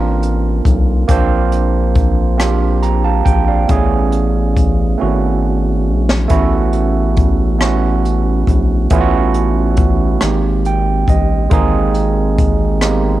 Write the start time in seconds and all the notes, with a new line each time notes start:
Already playing: A1 A#3 C4 D4 F4 A#4
0.23 closed hi-hat
0.65 B1, kick, closed hi-hat
1.08 A#1 A#3 C4 D4 F4 C5, kick, closed hi-hat
1.52 closed hi-hat
1.95 kick, closed hi-hat
2.38 A#3 C4 D4 F4 G4, cross-stick, closed hi-hat
2.83 G5 A#5, closed hi-hat
3.04 F5 A5
3.25 A#1 G5, kick, closed hi-hat
3.48 D5 F5
3.68 A1 A3 B3 C#4 E4 G#4, kick, closed hi-hat
4.12 closed hi-hat
4.57 kick, closed hi-hat
4.98 A3 B3 C#4 E4 F#4
5.02 G#1
5.89 A#1
6.09 snare
6.28 A1 A3 B3 C#4 E4 F#4, kick, closed hi-hat
6.73 closed hi-hat
7.17 kick, closed hi-hat
7.58 A3 B3 C#4 E4, cross-stick, closed hi-hat
7.62 F#4
8.05 closed hi-hat
8.47 A#1, kick, closed hi-hat
8.90 A1 A3 B3 C#4 E4 F4, kick, closed hi-hat
9.01 F#4
9.34 closed hi-hat
9.77 kick, closed hi-hat
10.21 G#1 G#3 A#3 B3 D#4 G4, cross-stick, closed hi-hat
10.29 C4
10.65 G5, closed hi-hat
11.08 A1 D#5, kick, closed hi-hat
11.50 G#1 G#3 A#3 C4 D#4 G#4, kick, closed hi-hat
11.94 closed hi-hat
12.38 kick, closed hi-hat
12.81 G#3 A#3 B3 D#4 G4, cross-stick, closed hi-hat
12.90 C4